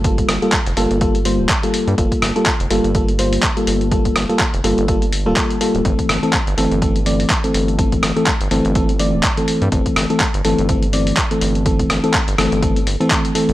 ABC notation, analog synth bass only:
X:1
M:4/4
L:1/16
Q:"Swing 16ths" 1/4=124
K:Aphr
V:1 name="Analog synth bass" clef=bass
G,,,2 G,,, z2 F,,, G,,, G,,,4 D,,, z3 G,, | G,,, z G,,, z2 F,,, G,,, G,,,4- G,,, z2 G,,,2- | G,,,2 G,,, z2 F,,, G,,, G,,,4 D,,, z3 D,,, | G,,, z G,,, z2 G,,, G,,, G,,,4- G,,, z2 G,,,2- |
G,,,2 G,,, z2 G,,, G,,, G,,,4 D,,, z3 G,, | G,,, z G,,, z2 G,,, G,,, G,,,4- G,,, z2 G,,,2- | G,,,2 G,,, z2 G,,, G,,, G,,,3 G,,, z4 G,,, |]